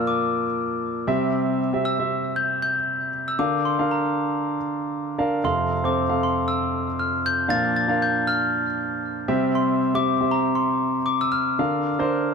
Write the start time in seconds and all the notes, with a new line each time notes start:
Already playing: A#2 F3 A#3 F4 D5
0.07 D6
1.07 C3 G3 C4 G4 E5
1.73 C4 G4 E5
1.85 E6
1.99 C4 G4 E5
2.36 G6
2.62 G6
3.28 E6
3.39 D3 D4 A#4 F5 D6
3.65 C6
3.79 D4 A#4 F5
3.91 A#5
5.18 D4 A#4 F5
5.44 F2 C3 C4 A4 F5 C6
5.84 C4 A4 C5 D6
6.09 C4 A4 F5
6.23 C6
6.48 E6
6.99 F6
7.26 G6
7.48 A#2 F3 D4 A#4 F5 A6
7.76 A6
7.88 D4 A#4 F5
8.02 G6
8.27 F6
9.28 C3 G3 C4 G4 E5
9.55 C6
9.94 C4 G4 E5 D6
10.21 C4 G4 E5
10.31 A#5
10.55 C6
11.06 D6
11.21 E6
11.32 F6
11.59 D3 D4 A#4 F5
11.99 D4 A#4 C5